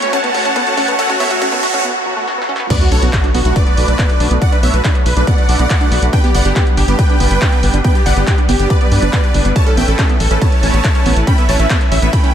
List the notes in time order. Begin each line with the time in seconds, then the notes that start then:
Already playing: riser
0.02 F#1 A3 C#4 F#4 C#5, closed hi-hat
0.13 A3 C#4 F#4 C#5 F#5 A5, kick, closed hi-hat
0.24 B3, closed hi-hat
0.34 F#1 A3 C#4 F#4 C#5, kick, open hi-hat
0.45 F#1 C#4, closed hi-hat
0.56 B3, kick, closed hi-hat
0.67 A3 C#4 F#4 C#5, closed hi-hat
0.77 F#1 A3 C#4 F#4 C#5, kick, open hi-hat
0.88 A3 B3 C#4 F#4 C#5, closed hi-hat
0.99 A3 C#4 F#4 A4 C#5 F#5, kick, closed hi-hat
1.09 C#4 F#4, kick, closed hi-hat
1.20 A3 B3 C#4 F#4 C#5 E5, kick, open hi-hat
1.31 A3 C#4 F#4 C#5, kick, closed hi-hat
1.41 A3 C#4 F#4 C#5, kick, closed hi-hat
1.52 B3, kick, closed hi-hat
1.63 F#1 F#4, kick, open hi-hat
1.74 A3 C#4 F#4 C#5, kick, closed hi-hat
1.85 B3
2.06 F#3
2.17 A3
2.27 snare
2.38 B3, snare
2.49 C#4
2.56 B3, snare
2.70 A3 B3 D4 F#4 B4 D5, kick, closed hi-hat, crash, sub drop
2.81 F#4, closed hi-hat
2.92 B1 A3 D4 F#4 A4 B4 C#5, open hi-hat
3.02 B1 A3 B3 D4 F#4 B4, closed hi-hat
3.13 A3 D4 F#4 B4, kick, clap, closed hi-hat
3.24 D4, closed hi-hat
3.34 B1 B3 F#4, open hi-hat
3.45 B1 A3 D4 F#4 B4, closed hi-hat
3.56 A3 D4 F#4 B4 D5, kick, closed hi-hat
3.67 B3, closed hi-hat
3.77 B1 A3 D4 F#4 B4, open hi-hat
3.88 B1 D4, closed hi-hat
3.99 B3, kick, clap, closed hi-hat
4.10 A3 D4 F#4 B4, closed hi-hat
4.20 B1 A3 D4 F#4 B4, open hi-hat
4.31 B1 A3 B3 D4 F#4 B4, closed hi-hat
4.42 A3 D4 F#4 B4 D5 F#5, kick, closed hi-hat
4.52 D4 B4, closed hi-hat
4.63 B1 A3 B3 D4 F#4 B4 C#5 E5, open hi-hat
4.74 B1 A3 D4 F#4 B4, closed hi-hat
4.84 A3 D4 F#4 B4, kick, clap, closed hi-hat
4.95 B3, closed hi-hat
5.06 B1 B4, open hi-hat
5.17 B1 A3 D4 F#4 B4, closed hi-hat
5.27 A3 B3 D4 F#4 B4 D5 F#5, kick, closed hi-hat
5.38 closed hi-hat
5.49 B1 A3 D4 F#4 B4, open hi-hat
5.59 B1 B3, closed hi-hat
5.70 kick, clap, closed hi-hat
5.81 A3 D4 F#4 B4, closed hi-hat
5.92 B1 A3 B3 D4 F#4 B4, open hi-hat
6.02 B1 A3 D4 F#4 B4, closed hi-hat
6.13 G3 B3 D4 B4 G5, kick, closed hi-hat
6.24 B3 G4, closed hi-hat
6.34 G1 G3 B3 D4 B4 D5 F#5, open hi-hat
6.45 G1 G3 B3 D4 G4 B4, closed hi-hat
6.56 G3 B3 D4 G4 B4, kick, clap, closed hi-hat
6.67 closed hi-hat
6.77 G1 D4 G4, open hi-hat
6.88 G1 G3 B3 D4 G4 B4, closed hi-hat
6.99 G3 B3 D4 B4 G5, kick, closed hi-hat
7.09 D4, closed hi-hat
7.20 G1 G3 B3 D4 B4, open hi-hat
7.31 G1, closed hi-hat
7.42 D4, kick, clap, closed hi-hat
7.52 G3 B3 D4 B4, closed hi-hat
7.63 G1 G3 B3 D4 B4, open hi-hat
7.74 G1 G3 B3 D4 B4, closed hi-hat
7.84 G3 B3 D4 B4 G5, kick, closed hi-hat
7.95 G4, closed hi-hat
8.06 G1 G3 B3 D4 B4 D5 F#5, open hi-hat
8.17 G1 G3 B3 D4 G4 B4, closed hi-hat
8.27 G3 B3 D4 G4 B4, kick, clap, closed hi-hat
8.38 D4, closed hi-hat
8.49 G1 B3 G4, open hi-hat
8.60 G1 G3 B3 D4 G4 B4, closed hi-hat
8.70 G3 B3 D4 B4 D5, kick, closed hi-hat
8.81 B3, closed hi-hat
8.91 G2 G3 B3 D4 B4, open hi-hat
9.02 G1 D4, closed hi-hat
9.13 B3, kick, clap, closed hi-hat
9.24 G3 B3 D4 B4, closed hi-hat
9.34 G1 G3 B3 D4 B4, open hi-hat
9.45 G1 G3 B3 D4 B4, closed hi-hat
9.56 A3 C#4 E4 B4 C#5 A5, kick, closed hi-hat, ride
9.67 C#4 A4, closed hi-hat
9.77 A1 A3 B3 C#4 E4 B4 E5 G5, open hi-hat
9.88 A1 A3 C#4 E4 A4 B4, closed hi-hat
9.99 A3 C#4 E4 A4 B4, kick, clap, closed hi-hat, ride
10.09 B3, closed hi-hat
10.20 A1 A4, open hi-hat
10.31 A1 A3 C#4 E4 A4 B4, closed hi-hat
10.41 A3 B3 C#4 E4 B4 C#5 A5, kick, closed hi-hat, ride
10.52 closed hi-hat
10.63 A1 A3 C#4 E4 B4, open hi-hat
10.74 A1 B3, closed hi-hat
10.84 kick, clap, closed hi-hat, ride
10.95 A3 C#4 E4 B4, closed hi-hat
11.06 A1 A3 B3 C#4 E4 B4, open hi-hat
11.17 A1 A3 C#4 E4 B4, closed hi-hat
11.27 A3 C#4 E4 B4 G5 B5, kick, closed hi-hat, ride
11.38 B3 E5, closed hi-hat
11.49 A1 A3 C#4 E4 B4 C#5 A5, open hi-hat
11.59 A1 A3 C#4 E4 B4 E5, closed hi-hat
11.70 A3 B3 C#4 E4 B4 E5, kick, clap, closed hi-hat, ride
11.81 closed hi-hat
11.92 A1 C#4 E5, open hi-hat
12.02 A1 A3 B3 C#4 E4 B4 E5, closed hi-hat
12.13 A3 C#4 E4 B4 G5 B5, kick, closed hi-hat, ride
12.24 C#4, closed hi-hat